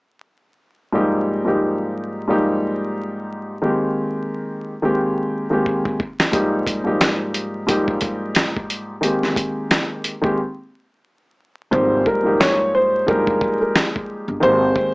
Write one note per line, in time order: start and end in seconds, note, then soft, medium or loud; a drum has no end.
0.92 1.42 G#2 medium
0.92 1.42 F3 medium
0.92 1.42 G3 medium
0.92 1.43 A#3 medium
0.92 1.43 D#4 medium
0.92 1.43 G4 loud
1.45 2.22 G#2 medium
1.45 2.22 F3 medium
1.45 2.23 G3 medium
1.45 2.23 A#3 medium
1.45 2.23 D#4 medium
1.45 2.24 G4 medium
2.28 3.54 G#2 medium
2.28 3.54 F3 medium
2.28 3.54 G3 medium
2.28 3.55 A#3 medium
2.28 3.55 D#4 medium
2.28 3.55 G4 loud
3.62 4.72 D#3 medium
3.62 4.73 G#3 medium
3.62 4.73 A#3 medium
3.62 4.73 C4 medium
3.62 4.74 G4 medium
4.82 5.45 D#3 medium
4.82 5.45 G#3 medium
4.82 5.45 A#3 medium
4.82 5.46 C4 medium
4.82 5.46 G4 loud
5.50 5.96 D#3 medium
5.50 5.96 G#3 medium
5.50 5.96 A#3 medium
5.50 5.97 C4 medium
5.50 5.97 G4 loud
5.66 kick medium
5.85 kick medium
6.00 kick medium
6.20 snare medium
6.32 6.81 G#2 medium
6.32 6.81 F3 medium
6.32 6.82 G3 medium
6.32 6.82 A#3 medium
6.32 6.82 D#4 medium
6.32 6.82 G4 loud
6.32 kick loud
6.32 closed hi-hat medium
6.67 kick medium
6.67 closed hi-hat medium
6.84 7.61 G#2 medium
6.84 7.62 F3 medium
6.84 7.62 G3 medium
6.84 7.62 A#3 medium
6.84 7.63 D#4 medium
6.84 7.63 G4 loud
7.01 snare loud
7.01 closed hi-hat medium
7.34 closed hi-hat medium
7.67 8.93 G#2 medium
7.67 8.93 F3 medium
7.67 8.94 G3 medium
7.67 8.94 A#3 medium
7.67 8.94 D#4 medium
7.67 8.95 G4 loud
7.67 kick medium
7.67 closed hi-hat medium
7.88 kick loud
8.01 kick medium
8.01 closed hi-hat medium
8.35 snare loud
8.35 closed hi-hat medium
8.57 kick medium
8.70 closed hi-hat medium
9.01 10.12 D#3 medium
9.01 10.12 G#3 medium
9.01 10.12 A#3 medium
9.01 10.13 C4 medium
9.01 10.13 G4 medium
9.01 closed hi-hat medium
9.23 snare soft
9.36 kick medium
9.36 closed hi-hat medium
9.71 snare loud
9.71 closed hi-hat medium
10.04 closed hi-hat medium
10.22 10.37 D#3 medium
10.22 10.37 G#3 medium
10.22 10.38 A#3 medium
10.22 10.38 C4 medium
10.22 10.38 G4 loud
10.22 kick medium
11.71 12.02 G#1 loud
11.71 12.20 G#2 loud
11.71 12.21 F3 medium
11.71 12.21 G3 medium
11.71 12.21 A#3 medium
11.71 12.22 D#4 medium
11.71 12.22 G4 loud
11.71 12.03 C5 medium
11.71 kick loud
12.06 12.37 A#4 medium
12.06 kick medium
12.24 13.01 G#2 medium
12.24 13.01 F3 medium
12.24 13.01 G3 medium
12.24 13.02 A#3 medium
12.24 13.02 D#4 medium
12.24 13.02 G4 loud
12.40 12.71 C#5 medium
12.40 snare loud
12.75 13.05 C5 medium
13.06 13.37 G1 medium
13.06 14.33 F3 medium
13.06 14.33 G3 medium
13.06 14.33 G#3 loud
13.06 14.34 A#3 medium
13.06 14.34 D#4 medium
13.06 14.34 G4 loud
13.06 13.58 A#4 medium
13.06 kick medium
13.27 kick loud
13.41 kick loud
13.61 13.74 A#4 medium
13.76 snare loud
13.96 kick medium
14.28 14.41 G1 medium
14.40 14.72 G#1 loud
14.40 14.94 D#3 medium
14.40 14.94 G#3 medium
14.40 14.94 A#3 medium
14.40 14.94 C4 medium
14.40 14.94 G4 loud
14.40 14.92 C5 loud
14.76 kick medium